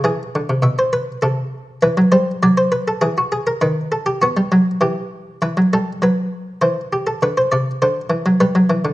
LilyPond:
<<
  \new Staff \with { instrumentName = "Harpsichord" } { \time 3/4 \key e \phrygian \tempo 4 = 100 gis'4 e''16 c''16 b'8 a'4 | b'8 c''8 d''16 c''16 b'16 a'16 gis'16 fis'16 gis'16 ais'16 | b'8 a'16 g'16 fis'4 g'4 | b'8 a'8 b'4 c''8 g'16 a'16 |
b'16 c''16 d''8 c''4 b'4 | }
  \new Staff \with { instrumentName = "Harpsichord" } { \clef bass \time 3/4 \key e \phrygian e8 d16 c16 b,4 c4 | e16 fis16 g8 fis4 e4 | dis4 b16 g16 fis8 e4 | e16 fis16 g8 fis4 e4 |
d8 c8 d8 e16 fis16 g16 fis16 e16 d16 | }
>>